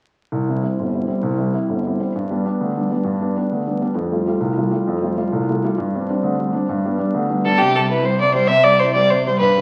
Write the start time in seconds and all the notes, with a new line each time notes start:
0.32 C2
0.49 G3 C4 E4
0.63 G3 C4 E4
0.79 G1
0.94 G3 C4 E4
1.08 G3 C4 E4
1.23 C2
1.38 G3 C4 E4
1.54 G3 C4 E4
1.69 G1
1.87 G3 C4 E4
2.01 G3 C4 E4
2.16 G2
2.31 G3 B3 D4
2.46 G3 B3 D4
2.61 D2
2.77 G3 B3 D4
2.91 G3 B3 D4
3.04 G2
3.21 G3 B3 D4
3.37 G3 B3 D4
3.52 D2
3.66 G3 B3 D4
3.82 G3 B3 D4
3.95 F2
4.11 G3 A3 F4
4.27 G3 A3 F4
4.41 C2
4.57 G3 A3 F4
4.71 G3 A3 F4
4.87 F2
5.02 G3 A3 F4
5.17 G3 A3 F4
5.32 C2
5.49 G3 A3 F4
5.64 G3 A3 F4
5.78 G2
5.95 G3 C4 D4
6.09 G3 C4 D4
6.23 D2
6.40 G3 D4
6.53 G3 C4 D4
6.69 G2
6.86 G3 B3 D4
6.99 G3 B3 D4
7.14 D2
7.30 G3 B3 D4
7.45 G3 B3 D4 A4
7.58 C3 G4
7.75 G3 A4
7.89 E4 B4
8.03 G3 C5
8.21 C3 D5
8.34 G3 C5
8.47 C3 E5
8.63 G3 D5
8.80 E4 C5
8.93 G3 D5
9.10 C3 C5
9.26 G3 C5
9.38 G2 B4
9.58 D3